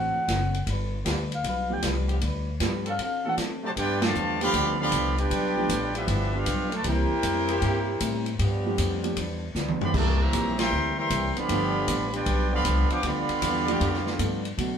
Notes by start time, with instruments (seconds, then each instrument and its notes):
Already playing: upright bass A1, hollow-body jazz guitar D3 A3 C4 F#4, grand piano E3 A3 C4 D4 F#4, trombone section F#3 C4 D4 A4, clarinet F#5
0.15 muted upright bass stroke
0.28 upright bass F#1, hollow-body jazz guitar D3 A3 C4 F#4, kick, snare, hi-hat pedal, ride
0.55 ride
0.67 upright bass G1, hollow-body jazz guitar G3 D4 F4 B4, kick, ride
1.05 upright bass D2, trombone section F3 B3 D4 G4, hollow-body jazz guitar G3 D4 F4 B4, kick, snare, hi-hat pedal, ride
1.32 clarinet F5, ride
1.44 upright bass B1, hollow-body jazz guitar G3 D4 F4 B4, kick, ride
1.48 clarinet F5
1.70 grand piano F3 A3 B3 D4 G4, clarinet G5
1.82 upright bass C2, hollow-body jazz guitar G3 D4 F4 B4, kick, snare, hi-hat pedal, ride
2.09 trombone section F3 B3 D4 G4, ride
2.21 upright bass D2, hollow-body jazz guitar G3 D4 F4 B4, kick, ride
2.60 upright bass G2, grand piano F3 A3 B3 D4 G4, hollow-body jazz guitar G3 D4 F4 B4, kick, snare, hi-hat pedal, ride
2.85 trombone section F#3 C4 D4 A4, ride
2.90 clarinet F5
2.98 hollow-body jazz guitar D3 C4 F#4 A4, clarinet F5, kick, ride
3.24 grand piano E3 A3 C4 D4 F#4, trombone section F#3 C4 D4 A4
3.29 clarinet F#5
3.37 hollow-body jazz guitar D3 C4 F#4 A4, kick, snare, hi-hat pedal, ride
3.63 trombone section C3 F#3 A3, trumpet section F#4 C5 D5 A5
3.75 hollow-body jazz guitar G2 F3 B3 D4, upright bass G2, trombone section B3 D4 G4, trumpet section F4 B4 D5 G5, kick, ride
4.02 trombone section D3 F3 A3, trumpet section G4 D5 F5 A5, snare, ride
4.14 upright bass E2, hollow-body jazz guitar G2 F3 B3 D4, hi-hat pedal
4.39 trombone section D3 F3 B3 D4 G4, grand piano F3 A3 B3 D4 G4, trumpet section G4 D5 F5, ride
4.43 trumpet section B5
4.53 upright bass D2, hollow-body jazz guitar G2 F3 B3 D4, kick, ride
4.80 trombone section D3 F3 B3, trumpet section G4 D5 F5 B5
4.91 upright bass C2, hollow-body jazz guitar G2 F3 B3 D4, kick, hi-hat pedal, ride
5.18 trombone section B3 D4 G4, trumpet section F4 B4 D5 G5, ride
5.29 upright bass B1, hollow-body jazz guitar G2 F3 B3 D4, kick, ride
5.57 grand piano F3 A3 B3 D4 G4
5.68 upright bass A1, hollow-body jazz guitar G2 F3 B3 D4, kick, hi-hat pedal, ride
5.93 trombone section F3 B3 D4 E4 G4, ride
5.97 trumpet section D4 G4 B4 E5
6.06 upright bass G1, hollow-body jazz guitar G2 F3 B3 D4, kick, ride
6.33 trombone section B3 D4 F4, trumpet section G4 B4 F5
6.37 trumpet section D4
6.46 upright bass B1, hollow-body jazz guitar G2 F3 B3 D4, kick, hi-hat pedal, ride
6.72 trombone section A3, trumpet section F4 B4 D5 A5, ride
6.84 upright bass C2, hollow-body jazz guitar C3 G3 A#3 E4, grand piano E3 A#3 C4 D4 G4, trombone section E4 G4 A#4, trumpet section E4 C5 G5, kick, ride
6.88 trumpet section A#4
7.11 muted upright bass stroke
7.23 upright bass F2, hollow-body jazz guitar C3 G3 A#3 E4, kick, hi-hat pedal, ride
7.49 trombone section E3 A#3 C4 G4, ride
7.62 upright bass G2, hollow-body jazz guitar C3 G3 A#3 E4, kick, ride
8.00 upright bass A2, hollow-body jazz guitar C3 G3 A#3 E4, kick, hi-hat pedal, ride
8.26 ride
8.38 upright bass G2, hollow-body jazz guitar G2 F3, trombone section F3 B3 D4 G4, kick, ride
8.42 hollow-body jazz guitar B3 D4
8.66 grand piano F3 A3 B3 D4 G4
8.78 upright bass F2, hollow-body jazz guitar G2 F3 B3 D4, kick, hi-hat pedal, ride
9.04 grand piano F3 A3 B3 D4 G4, ride
9.16 upright bass E2, hollow-body jazz guitar G2 F3 B3 D4, kick, ride
9.55 upright bass D2, hollow-body jazz guitar G2 F3 B3 D4, snare, hi-hat pedal
9.68 high tom
9.81 trombone section D3 F3 B3, trumpet section G4 D5 F5 B5, muted upright bass stroke, floor tom
9.93 upright bass C2, hollow-body jazz guitar C3 G3 A#3, trombone section E3 A3 A#3 C4 G4, trumpet section F4 A#4 D5 A5, kick, crash
9.98 hollow-body jazz guitar E4
10.20 trombone section E3 G3 A#3, trumpet section G4 C5 E5 A#5
10.33 upright bass A#1, hollow-body jazz guitar C3 G3 A#3 E4, kick, hi-hat pedal, ride
10.58 trombone section E3 G3 C4, trumpet section A#4 E5 G5 C6, snare, ride
10.71 upright bass D2, hollow-body jazz guitar C3 G3 A#3 E4
10.97 trombone section E3 G3 C4, trumpet section A#4 E5 G5 C6
11.10 upright bass C2, hollow-body jazz guitar C3 G3 A#3 E4, kick, hi-hat pedal, ride
11.35 trombone section D3 F3 B3, trumpet section G4 D5 F5 B5, muted upright bass stroke, ride
11.48 upright bass G1, hollow-body jazz guitar G2 F3 B3, trombone section F3 B3 D4 G4, grand piano F3 A3 B3 D4 G4, kick, ride
11.53 hollow-body jazz guitar D4
11.87 upright bass A1, hollow-body jazz guitar G2 F3 B3 D4, kick, hi-hat pedal, ride
12.13 trombone section B3 D4 G4, trumpet section F4 B4 D5 G5, ride
12.25 upright bass B1, hollow-body jazz guitar G2 F3 B3 D4, kick, ride
12.52 trombone section D3 F3 B3, trumpet section G4 D5 F5 B5
12.65 upright bass C2, hollow-body jazz guitar G2 F3 B3 D4, kick, hi-hat pedal, ride
12.90 trombone section F3 B3 D4, trumpet section B4 F5 G5 D6, muted upright bass stroke, ride
13.03 upright bass D2, hollow-body jazz guitar G2 F3 B3, trombone section D3 B3 F4, trumpet section G4 D5 F5 B5, kick, ride
13.07 hollow-body jazz guitar D4
13.29 muted upright bass stroke, ride
13.41 upright bass E2, hollow-body jazz guitar G2 F3 B3 D4, kick, hi-hat pedal, ride
13.67 trombone section F3 B3 D4 G4, grand piano F3 A3 B3 D4 G4, ride
13.80 upright bass F2, hollow-body jazz guitar G2 F3 B3 D4, kick, ride
13.94 snare
14.06 snare
14.19 hollow-body jazz guitar G2 F3 B3 D4, upright bass G2, grand piano F3 A3 B3 D4 A4, kick, hi-hat pedal, ride
14.45 ride
14.57 hollow-body jazz guitar B2 F#3 A3 D4, upright bass B2, grand piano F#3 A3 B3 D4 F#4, kick, ride